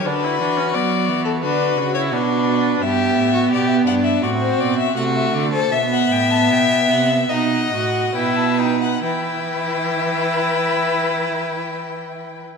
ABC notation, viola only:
X:1
M:4/4
L:1/16
Q:1/4=79
K:Em
V:1 name="Viola"
D E D ^C B,4 D2 F E D4 | B,8 C4 A,4 | B,8 ^D2 F2 E2 D2 | E16 |]